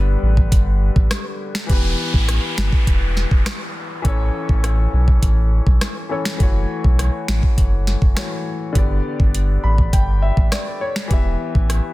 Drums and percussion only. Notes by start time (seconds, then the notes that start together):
0.37 kick
0.52 kick, closed hi-hat
0.96 kick
1.11 cross-stick, snare, closed hi-hat
1.55 finger snap, snare
1.70 kick, closed hi-hat
2.14 kick
2.28 cross-stick, closed hi-hat
2.58 finger snap, snare
2.72 kick
2.87 kick, closed hi-hat
3.17 snare
3.31 kick
3.46 finger snap, cross-stick, snare, closed hi-hat
4.05 kick, closed hi-hat
4.49 kick
4.64 cross-stick, closed hi-hat
5.08 kick
5.22 kick, closed hi-hat
5.67 kick
5.81 cross-stick, snare, closed hi-hat
6.25 finger snap, snare
6.40 kick, closed hi-hat
6.84 kick
6.99 cross-stick, closed hi-hat
7.28 finger snap, snare
7.43 kick
7.58 kick, closed hi-hat
7.87 snare
8.02 kick
8.17 finger snap, cross-stick, snare, closed hi-hat
8.75 kick, closed hi-hat
9.20 kick
9.35 closed hi-hat
9.78 kick
9.93 kick, closed hi-hat
10.37 kick
10.52 cross-stick, snare, closed hi-hat
10.96 finger snap, snare
11.11 kick, closed hi-hat
11.55 kick
11.70 cross-stick, closed hi-hat